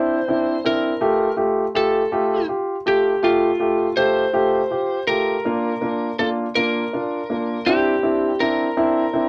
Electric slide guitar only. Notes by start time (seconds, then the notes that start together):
Already playing: C5
0.66 A#4
1.76 A4
2.88 G4
3.24 F4
3.97 C5
5.07 A#4
6.19 A4
6.55 A#4
7.67 G4
8.40 A#4